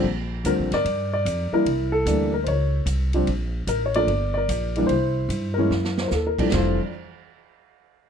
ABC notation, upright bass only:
X:1
M:4/4
L:1/8
Q:"Swing" 1/4=148
K:Bblyd
V:1 name="Upright bass" clef=bass
B,,,2 (3D,, B,,, G,,, G,,2 F,, z | C,,2 D,,2 _D,,2 C,,2 | B,,,2 A,,,2 G,,,2 B,,,2 | C,,2 G,,2 _G,,2 _E,,2 |
F,,, z6 z |]